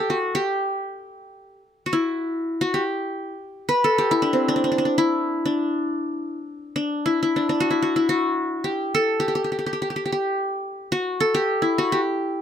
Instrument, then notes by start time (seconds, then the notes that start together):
qanun
Already playing: G4 A4
0.10 F#4
0.35 G4
1.86 F#4
1.93 E4
2.61 F#4
2.74 G4
3.69 B4
3.84 A4
3.98 G4
4.11 E4
4.22 D4
4.33 C4
4.48 D4
4.56 D4
4.64 D4
4.72 D4
4.78 D4
4.85 D4
4.98 E4
5.46 D4
6.76 D4
7.06 E4
7.23 E4
7.36 D4
7.49 D4
7.60 F#4
7.70 E4
7.82 F#4
7.96 E4
8.09 F#4
8.64 G4
8.95 A4
9.20 G4
9.28 G4
9.35 G4
9.44 G4
9.52 G4
9.59 G4
9.66 G4
9.73 G4
9.82 G4
9.90 G4
9.96 G4
10.06 G4
10.12 G4
10.92 F#4
11.20 A4
11.34 G4
11.62 E4
11.78 F#4
11.92 G4